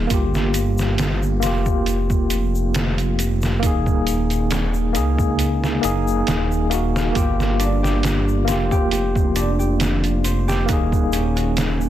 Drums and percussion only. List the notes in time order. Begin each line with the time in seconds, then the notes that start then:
0.10 kick, closed hi-hat, shaker
0.34 snare, shaker
0.54 closed hi-hat, shaker
0.78 snare, shaker
0.98 snare, closed hi-hat, shaker
1.23 shaker
1.42 snare, closed hi-hat, shaker
1.66 kick, shaker
1.86 closed hi-hat, shaker
2.10 kick, shaker
2.30 closed hi-hat, shaker
2.55 shaker
2.74 snare, closed hi-hat, shaker
2.98 closed hi-hat, shaker
3.19 closed hi-hat, shaker
3.42 snare, shaker
3.63 kick, closed hi-hat, shaker
3.86 kick, shaker
4.07 closed hi-hat, shaker
4.30 closed hi-hat, shaker
4.51 snare, closed hi-hat, shaker
4.74 shaker
4.95 closed hi-hat, shaker
5.18 kick, shaker
5.39 closed hi-hat, shaker
5.64 snare, shaker
5.83 closed hi-hat, shaker
6.08 shaker
6.27 snare, closed hi-hat, shaker
6.52 shaker
6.71 closed hi-hat, shaker
6.96 snare, shaker
7.15 kick, closed hi-hat, shaker
7.40 snare, shaker
7.60 closed hi-hat, shaker
7.84 snare, shaker
8.03 snare, closed hi-hat, shaker
8.28 shaker
8.48 snare, closed hi-hat, shaker
8.71 kick, shaker
8.91 closed hi-hat, shaker
9.15 kick, shaker
9.36 closed hi-hat, shaker
9.60 shaker
9.80 snare, closed hi-hat, shaker
10.04 closed hi-hat, shaker
10.24 closed hi-hat, shaker
10.49 snare, shaker
10.68 kick, closed hi-hat, shaker
10.92 kick, shaker
11.13 closed hi-hat, shaker
11.37 closed hi-hat, shaker
11.57 snare, closed hi-hat, shaker
11.81 shaker